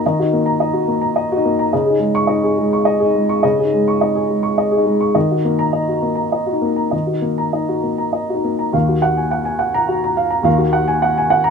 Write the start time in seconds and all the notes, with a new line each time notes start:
Already playing: A#5
0.06 D#3 D#5
0.19 D#4 F#4
0.33 A#3
0.46 A#5
0.60 D#4 D#5
0.73 F#4
0.88 A#3
1.01 A#5
1.16 D#5
1.32 F#4
1.37 D#4
1.45 A#3
1.59 A#5
1.73 C#3 D#5
1.86 G#4
1.90 D#4
1.99 G#3
2.15 C#6
2.27 D#4 D#5
2.43 G#4
2.58 G#3
2.73 C#6
2.85 D#5
3.00 G#4
3.04 D#4
3.15 G#3
3.29 C#6
3.43 C#3 D#5
3.59 G#4
3.64 D#4
3.73 G#3
3.88 C#6
4.01 D#4 D#5
4.15 G#4
4.30 G#3
4.43 C#6
4.58 D#5
4.71 G#4
4.77 D#4
4.86 G#3
5.01 C#6
5.15 D#3 D#5
5.31 D#4 F#4
5.44 A#3
5.59 A#5
5.73 D#4 D#5
5.88 F#4
6.02 A#3
6.15 A#5
6.32 D#5
6.46 F#4
6.53 D#4
6.61 A#3
6.76 A#5
6.91 D#3 D#5
7.07 F#4
7.12 D#4
7.21 A#3
7.38 A#5
7.53 D#4 D#5
7.68 F#4
7.83 A#3
7.98 A#5
8.13 D#5
8.30 F#4
8.35 D#4
8.44 A#3
8.59 A#5
8.72 D#2 D#3 F5
8.88 F#4
9.02 F#5
9.17 G#5
9.31 F#5
9.45 G#5
9.59 F#5
9.74 A#5
9.88 F#4
10.04 A#5
10.17 F5
10.30 A#5
10.43 D#2 D#3 F5
10.58 F#4
10.73 F#5
10.88 G#5
11.02 F#5
11.18 G#5
11.30 F#5
11.44 A#5